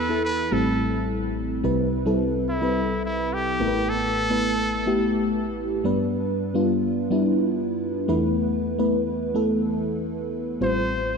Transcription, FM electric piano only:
Already playing: E2 E3 B3 E4 A4
0.09 B3 E4 A4
0.52 A1 A2 G3 A3 C4 E4 A4
1.63 C2 C3 G3 C4 E4 B4
2.06 G3 C4 E4 A4
2.61 G3 C4 E4 B4
3.60 A1 A2 A3 B3 E4 A#4
3.68 B4
4.30 A3 B3 E4 B4
4.86 A3 B3 E4 G4
5.84 G2 G3 B3 D4 B4
6.54 G3 B3 D4 F4
7.10 G3 B3 D4 E4
8.08 E2 E3 A3 B3 E4 B4
8.78 A3 B3 E4 B4
9.34 A3 B3 E4 A4
10.61 A1 A2 G3 C4 F4 C5

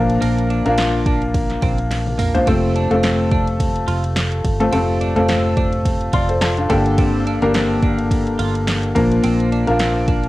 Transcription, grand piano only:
Already playing: A#2 F3 A#3 D4 F4 A#4
0.66 A#3 D4 F4 A#4
2.34 A#3 D4 F4 C5
2.47 C3 A3 C4 F4 A4
2.91 A3 C4 F4 A4
4.60 A3 C4 F4 A4
4.72 C3 A3 C4 F4 A4
5.16 A3 C4 F4 A4
6.13 D5 C6
6.29 A4 C5
6.42 F4 A4 A5
6.58 D4 F4
6.70 G2 D3 A#3 D4 G4 A4 G5
7.42 A#3 D4 G4 A#4
8.95 A#2 F3 A#3 D4 F4 A#4
9.67 A#3 D4 F4 A#4

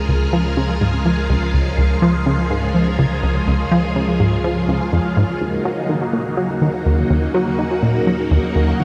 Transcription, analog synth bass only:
0.09 C#2
0.33 F3
0.57 C#3
0.81 G#2
1.05 F3
1.29 C#2
1.54 C#2
1.78 C#2
2.02 F3
2.26 C#3
2.50 G#2
2.74 F3
2.99 C#2
3.23 C#2
3.47 C#2
3.71 F3
3.96 C#3
4.20 G#2
4.44 F3
4.68 C#2
4.93 F2
5.17 G#2
5.41 D#2
5.65 F#3
5.89 D#3
6.13 A#2
6.37 F#3
6.62 D#2
6.86 D#2
7.10 D#2
7.34 F#3
7.59 D#3
7.83 A#2
8.07 F#3
8.31 D#2
8.55 D#2
8.80 D#2

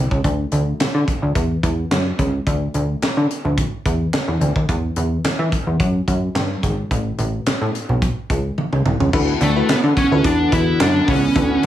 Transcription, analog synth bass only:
0.11 C#2
0.24 D2
0.52 D2
0.80 D3
0.94 D3
1.22 D2
1.35 E2
1.63 E2
1.91 F#2
2.19 C#2
2.47 D2
2.74 D2
3.02 D3
3.17 D3
3.45 D2
3.86 E2
4.28 E2
4.41 D2
4.56 D#2
4.69 E2
4.96 E2
5.24 E3
5.39 E3
5.67 E2
5.80 F#2
6.08 F#2
6.35 G2
6.63 G#1
6.91 A1
7.18 A1
7.46 A2
7.61 A2
7.89 B1
8.30 C#2
8.72 C#2
8.85 C2
9.00 C#2
9.13 D2
9.41 D2
9.69 D3
9.83 D3
10.12 D2
10.25 E2
10.52 E2
10.80 F#2
11.08 C#2
11.36 D2

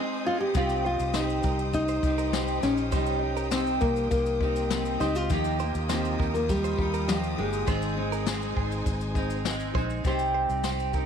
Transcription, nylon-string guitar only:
0.26 F4
0.40 G4
0.57 F4
0.86 F4
1.15 D#4
1.74 D#4
2.63 C#4
3.52 C4
3.81 A#3
4.11 A#3
5.00 D#4
5.16 F4
5.30 D#4
5.89 C4
6.34 A#3
6.50 G3
7.08 G3
7.38 G#3
10.07 C5

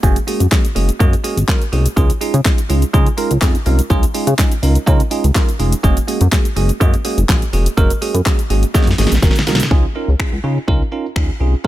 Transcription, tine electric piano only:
0.03 G#3 A#3 C#4 F#4 G#4
0.27 G#3 A#3 C#4 F#4 G#4
0.51 G#3 A#3 C#4 F#4 G#4
0.75 G#3 A#3 C#4 F#4 G#4
1.00 G#3 A#3 C#4 F#4 G#4
1.24 G#3 A#3 C#4 F#4 G#4
1.48 G#3 A#3 C#4 F#4 A#4
1.72 G#3 A#3 C#4 F#4 G#4
1.96 G#3 C#4 D#4 F4 G#4
2.21 G#3 C#4 D#4 F4 G#4
2.45 G#3 C#4 D#4 F4 G#4
2.69 G#3 C#4 D#4 F4 G#4
2.93 G#3 C#4 D#4 F4 G#4
3.17 G#3 C#4 D#4 F4 A#4
3.41 G#3 C#4 D#4 F4 G#4
3.66 G#3 C#4 D#4 F4 A#4
3.90 G#3 C#4 D#4 F4 G#4
4.14 G#3 C#4 D#4 F4 G#4
4.38 G#3 C#4 D#4 F4 G#4
4.62 G#3 C#4 D#4 F4 A#4
4.86 G#3 C#4 D#4 F4 A#4
5.11 G#3 C#4 D#4 F4 G#4
5.35 G#3 C#4 D#4 F4 A#4
5.59 G#3 C#4 D#4 F4 G#4
5.83 G#3 A#3 C#4 F#4 G#4
6.07 G#3 A#3 C#4 F#4 G#4
6.32 G#3 A#3 C#4 F#4 G#4
6.56 G#3 A#3 C#4 F#4 G#4
6.80 G#3 A#3 C#4 F#4 G#4
7.04 G#3 A#3 C#4 F#4 G#4
7.29 G#3 A#3 C#4 F#4 G#4
7.53 G#3 A#3 C#4 F#4 G#4
7.77 G#3 A#3 C#4 F#4 A#4
8.01 G#3 A#3 C#4 F#4 G#4
8.26 G#3 A#3 C#4 F#4 G#4
8.50 G#3 A#3 C#4 F#4 G#4
8.74 G#3 A#3 C#4 F#4 G#4
8.98 G#3 A#3 C#4 F#4 G#4
9.23 G#3 A#3 C#4 F#4 A#4
9.47 G#3 A#3 C#4 F#4 A#4
9.71 C#4 D#4 F4 G#4
9.95 C#4 D#4 F4 A#4
10.19 C#4 D#4 F4 G#4
10.44 C#4 D#4 F4 G#4
10.68 C#4 D#4 F4 A#4
10.92 C#4 D#4 F4 A#4
11.16 C#4 D#4 F4 G#4
11.40 C#4 D#4 F4 G#4
11.64 C#4

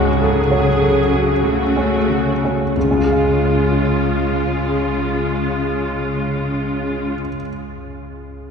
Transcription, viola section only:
Already playing: G#3 F#4
0.20 F#3 G#4
1.42 A3 F#4
2.76 G#3 F4

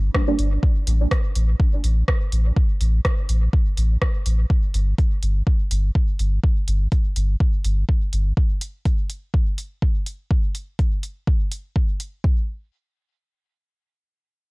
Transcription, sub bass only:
0.39 G1
0.87 A1
1.35 A1
1.84 A1
2.32 A1
2.81 A1
3.29 A1
3.77 A1
4.26 A1
4.74 G1
5.23 G1
5.71 G1
6.19 G1
6.68 G1
7.16 G1
7.64 G1
8.13 G1

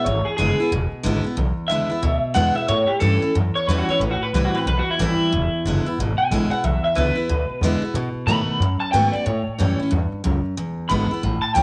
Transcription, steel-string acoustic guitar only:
0.06 E2
0.38 D3 G#3 B3 E4
0.60 B3 E4
0.72 B2
1.03 D3 G#3 B3 E4
1.24 B3 E4
1.37 E2
1.70 D3 G#3 B3 E4
1.90 B3 E4
2.03 B2
2.34 D3 G#3 B3 E4
2.55 B3 E4
2.68 A2
3.00 E3 G3 C#4 E4
3.22 C#4 E4
3.35 E2
3.69 E3 G3 C#4 E4
3.89 C#4 E4
4.01 A2
4.34 E3 G3 C4 E4
4.55 C4 E4
4.67 E2
4.99 E3 G3 C4 E4
5.32 E2
5.66 D3 G#3 B3 E4
5.86 B3 E4
6.00 B2
6.31 D3 G#3 B3 E4
6.51 B3 E4
6.64 E2
6.95 D3 G#3 B3 E4
7.16 B3 E4
7.29 B2
7.63 D3 G#3 B3 E4
7.82 B3 E4
7.95 B2
8.28 D#3 A3 B3 F#4
8.62 F#2
8.93 D#3 A3 B3 F#4
9.13 B3 F#4
9.26 A2
9.59 E3 G3 C#4 E4
9.80 C#4 E4
9.91 G2
10.24 F#2
10.57 E2
10.89 D3 G#3 B3 E4
11.11 B3 E4
11.23 A2
11.55 E3 G3 C#4 E4

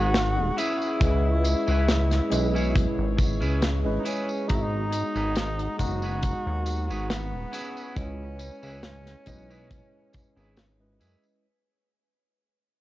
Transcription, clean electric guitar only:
Already playing: D#4 F#4 G#4 B4
0.57 C#4 E4 G#4 B4
1.44 muted clean electric guitar stroke
1.67 C#4 E4 G#4 B4
2.30 muted clean electric guitar stroke
2.54 C#4 E4 G#4 C#5
3.17 muted clean electric guitar stroke
3.40 C#4 E4 G#4 B4
4.04 C#4 E4 G#4 B4
4.91 muted clean electric guitar stroke
5.15 D#4 F#4 G#4 B4
5.78 muted clean electric guitar stroke
6.02 D#4 F#4 G#4 B4
6.65 muted clean electric guitar stroke
6.89 D#4 F#4 G#4 B4
7.52 C#4 E4 G#4 B4
8.39 muted clean electric guitar stroke
8.62 C#4 E4 G#4 B4
9.26 muted clean electric guitar stroke
9.50 C#4 E4 G#4 B4
10.13 muted clean electric guitar stroke
10.36 C#4 E4 G#4 B4
11.00 C#4 E4 G#4 B4

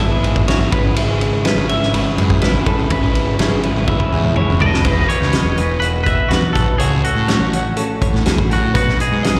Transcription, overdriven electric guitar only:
Already playing: G#2
0.00 E3 G#3 B3 E4
0.47 G#2 E3 G#3 B3 E4
0.71 G#2 C#3 G#3 C#4 E4
0.96 G#2 C#3 G#3 C#4 E4
1.44 C#3 G#3 C#4 E4
1.68 G#3 C#4 E4
1.94 C#3 G#3 C#4 E4
2.41 G#2 C#3 G#3 C#4 E4
2.65 G#3 C#4 E4
2.90 G#2 C#3 G#3 C#4 E4
3.38 C#3 G#3 C#4 E4
3.63 G#3 C#4 E4
3.88 C#3 G#3 C#4 E4
4.36 G#2 C#3 G#3 C#4 E4
4.61 G#3 C#4 E4

